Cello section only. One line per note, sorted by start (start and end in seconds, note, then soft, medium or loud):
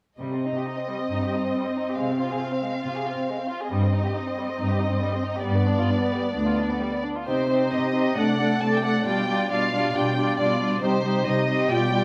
0.20 0.57 C3 soft
1.10 1.46 G2 soft
1.97 2.33 C3 soft
2.85 3.20 C3 soft
3.71 4.07 G2 soft
4.58 4.94 G2 soft
5.46 5.82 G2 medium
6.34 6.72 D2 soft
7.27 7.66 C3 soft
7.72 8.12 C3 soft
8.17 8.57 C3 soft
8.62 9.01 C3 soft
9.07 9.46 B2 soft
9.51 9.90 B2 soft
9.95 10.34 B2 soft
10.39 10.77 B2 soft
10.82 11.21 C3 soft
11.26 11.65 C3 soft
11.71 12.04 B2 soft